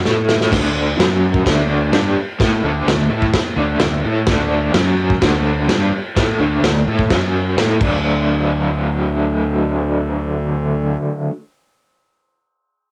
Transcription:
0.04 fingered electric bass A2, overdriven electric guitar A3 E4 A4, snare
0.29 snare
0.41 snare
0.51 fingered electric bass D2, overdriven electric guitar D3 A3 D4, kick, snare, crash
0.98 fingered electric bass F#2, overdriven electric guitar F#3 C#4 F#4, snare, crash
1.34 kick
1.45 fingered electric bass D2, overdriven electric guitar D3 A3 D4, kick, snare, crash
1.92 fingered electric bass G2, overdriven electric guitar G3 D4 G4, snare, crash
2.16 muted overdriven electric guitar stroke, muted fingered electric bass stroke
2.39 fingered electric bass A2, overdriven electric guitar A3 E4 A4, kick, snare, crash
2.62 fingered electric bass D2, overdriven electric guitar D3 A3 D4
2.86 fingered electric bass D2, overdriven electric guitar D3 A3, snare, crash
3.09 fingered electric bass A2, overdriven electric guitar A3 E4 A4
3.22 kick
3.33 muted overdriven electric guitar stroke, muted fingered electric bass stroke, kick, snare, crash
3.56 fingered electric bass D2, overdriven electric guitar D3 A3 D4
3.80 fingered electric bass D2, overdriven electric guitar D3 A3, snare, crash
4.04 fingered electric bass A2, overdriven electric guitar A3 E4 A4
4.27 fingered electric bass D2, overdriven electric guitar D3 A3 D4, kick, snare, crash
4.74 fingered electric bass F#2, overdriven electric guitar F#3 C#4 F#4, snare, crash
5.10 kick
5.21 fingered electric bass D2, overdriven electric guitar D3 A3 D4, kick, snare, crash
5.68 fingered electric bass G2, overdriven electric guitar G3 D4 G4, snare, crash
5.91 muted fingered electric bass stroke, muted overdriven electric guitar stroke
6.16 fingered electric bass A2, overdriven electric guitar A3 E4 A4, kick, snare, crash
6.38 fingered electric bass D2, overdriven electric guitar D3 A3 D4
6.62 fingered electric bass D2, overdriven electric guitar D3 A3, snare, crash
6.87 fingered electric bass A2, overdriven electric guitar A3 E4 A4
6.99 kick
7.10 fingered electric bass F#2, overdriven electric guitar F#3 C#4 F#4, kick, snare, crash
7.56 fingered electric bass A2, overdriven electric guitar A3 E4 A4, snare, crash
7.79 fingered electric bass D2, overdriven electric guitar D3 F#3 A3, kick, crash
7.83 overdriven electric guitar D4

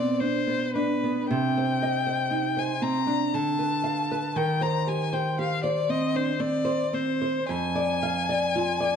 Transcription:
Already playing: nylon-string guitar B2 B3 C4, violin D5
0.21 nylon-string guitar D4, violin C5
0.47 nylon-string guitar B3
0.75 nylon-string guitar D4, violin B4
1.04 nylon-string guitar B3
1.29 nylon-string guitar C3, violin G5
1.57 nylon-string guitar C5
1.82 nylon-string guitar D#5
2.07 nylon-string guitar C5
2.31 nylon-string guitar D#4
2.57 nylon-string guitar C5, violin G#5
2.82 nylon-string guitar C4, violin A#5
3.07 nylon-string guitar D4
3.34 nylon-string guitar D3, violin A5
3.59 nylon-string guitar B4
3.84 nylon-string guitar F5
4.12 nylon-string guitar B4
4.36 nylon-string guitar D#3, violin G5
4.61 nylon-string guitar C5, violin A#5
4.87 nylon-string guitar G4, violin G#5
5.13 nylon-string guitar C5, violin G5
5.39 nylon-string guitar G4, violin F5
5.64 nylon-string guitar C5, violin D5
5.89 nylon-string guitar C4, violin D#5
6.15 nylon-string guitar D4, violin C5
6.40 nylon-string guitar C4, violin D5
6.65 nylon-string guitar C5
6.93 nylon-string guitar C4, violin C5
7.22 nylon-string guitar C5
7.49 nylon-string guitar F2, violin G#5
7.75 nylon-string guitar D5
8.03 nylon-string guitar F5
8.29 nylon-string guitar D5
8.56 nylon-string guitar F4
8.80 nylon-string guitar D5

